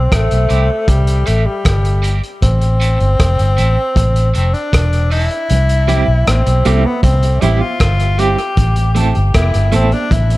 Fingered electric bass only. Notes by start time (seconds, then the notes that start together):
Already playing: B1
0.12 A1
0.32 B1
0.51 C2
0.88 C2
1.28 A1
1.66 G1
2.43 A1
3.01 G1
3.20 F1
3.40 G1
3.59 A1
3.96 A1
4.36 F1
4.74 E1
5.51 C2
6.08 B1
6.28 A1
6.47 B1
6.66 C2
7.03 C2
7.43 A1
7.81 G1
8.57 A1
9.17 G1
9.35 F1
9.55 G1
9.74 A1
10.12 A1